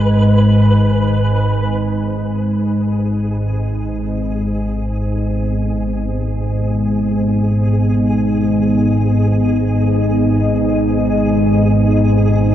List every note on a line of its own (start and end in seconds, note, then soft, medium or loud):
0.00 1.81 G#1 medium
0.00 1.81 G#2 medium
0.00 1.85 B4 medium
1.81 12.55 G#1 medium
1.81 12.55 G#2 medium
1.81 12.55 B3 medium
1.81 12.55 G#4 medium
3.32 12.55 D#4 medium
4.89 12.55 G#4 medium
6.00 12.55 D#5 medium